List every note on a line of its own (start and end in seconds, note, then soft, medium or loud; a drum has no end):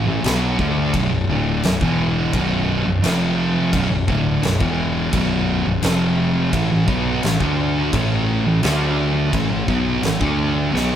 0.07 0.23 A1 loud
0.07 0.23 A2 medium
0.07 0.24 E3 loud
0.24 0.56 B1 medium
0.24 0.58 B2 loud
0.24 0.59 F#3 loud
0.24 0.59 B3 loud
0.24 snare loud
0.24 crash medium
0.59 0.92 D2 medium
0.59 0.93 D3 loud
0.59 0.93 A3 loud
0.59 0.94 D4 loud
0.59 kick loud
0.94 1.10 B0 loud
0.94 1.11 B1 medium
0.94 1.11 F#2 loud
0.94 kick loud
0.94 crash medium
1.11 1.28 B0 medium
1.11 1.29 B1 medium
1.11 1.30 F#2 medium
1.28 1.61 D1 loud
1.28 1.63 D2 loud
1.28 1.63 A2 loud
1.28 1.64 D3 loud
1.63 1.80 B0 medium
1.63 1.82 B1 medium
1.63 1.82 F#2 medium
1.63 snare loud
1.63 crash medium
1.81 2.30 E1 medium
1.81 2.33 E2 medium
1.81 2.33 B2 medium
1.81 2.33 E3 loud
1.81 kick loud
2.33 2.82 B0 loud
2.33 2.85 B1 loud
2.33 2.86 F#2 loud
2.33 2.86 B2 loud
2.33 kick loud
2.33 crash medium
2.86 3.03 B0 medium
2.86 3.03 B1 medium
2.86 3.03 F#2 medium
3.03 3.69 F1 loud
3.03 3.72 F2 loud
3.03 3.73 C3 medium
3.03 3.73 F3 loud
3.03 snare loud
3.03 crash medium
3.73 3.89 B0 loud
3.73 3.89 B1 loud
3.73 3.90 F#2 loud
3.73 kick loud
3.73 crash medium
3.90 4.07 B0 medium
3.90 4.07 B1 medium
3.90 4.08 F#2 medium
4.08 4.41 D1 loud
4.08 4.42 D2 loud
4.08 4.42 A2 loud
4.08 4.42 D3 loud
4.08 kick loud
4.42 4.59 B0 medium
4.42 4.59 B1 medium
4.42 4.60 F#2 medium
4.42 snare loud
4.42 crash medium
4.60 5.09 E1 loud
4.60 5.12 E2 medium
4.60 5.12 B2 loud
4.60 5.12 E3 loud
4.60 kick loud
5.12 5.62 B0 loud
5.12 5.64 B1 loud
5.12 5.65 F#2 loud
5.12 5.65 B2 loud
5.12 kick loud
5.12 crash medium
5.66 5.82 B0 medium
5.66 5.82 B1 medium
5.66 5.82 F#2 medium
5.82 6.49 F1 loud
5.82 6.52 F2 medium
5.82 6.52 C3 loud
5.82 6.52 F3 loud
5.82 snare loud
5.82 crash medium
6.53 6.69 A1 loud
6.53 6.69 A2 loud
6.53 6.70 E3 loud
6.53 kick loud
6.53 crash medium
6.71 6.87 A1 medium
6.71 6.88 A2 medium
6.71 6.88 E3 medium
6.87 7.20 B1 loud
6.87 7.22 B2 loud
6.87 7.23 F#3 loud
6.87 7.23 B3 loud
6.87 kick loud
7.23 7.40 A1 medium
7.23 7.41 A2 medium
7.23 7.40 E3 medium
7.23 snare loud
7.23 crash medium
7.41 7.90 D2 loud
7.41 7.92 D3 medium
7.41 7.92 A3 medium
7.41 7.93 D4 loud
7.41 kick loud
7.93 8.42 A1 loud
7.93 8.45 A2 loud
7.93 8.45 E3 loud
7.93 8.45 A3 loud
7.93 kick loud
7.93 crash medium
8.46 8.62 A1 loud
8.46 8.64 A2 medium
8.46 8.63 E3 medium
8.63 9.30 D2 loud
8.63 9.33 D3 medium
8.63 9.33 A3 loud
8.63 9.33 D4 loud
8.63 snare loud
8.63 crash medium
9.33 9.50 A1 loud
9.33 9.50 A2 loud
9.33 9.50 E3 loud
9.33 kick loud
9.33 crash medium
9.51 9.68 A1 medium
9.51 9.69 A2 medium
9.51 9.67 E3 medium
9.68 10.01 B1 medium
9.68 10.02 B2 loud
9.68 10.03 F#3 loud
9.68 10.03 B3 loud
9.68 kick loud
10.03 10.20 A1 medium
10.03 10.21 A2 medium
10.03 10.20 E3 medium
10.03 snare loud
10.03 crash medium
10.20 10.70 D2 loud
10.20 10.72 D3 medium
10.20 10.72 A3 loud
10.20 10.73 D4 loud
10.20 kick loud
10.73 10.96 B1 loud
10.73 10.96 B2 loud
10.73 10.96 F#3 loud
10.73 10.96 B3 loud
10.73 snare medium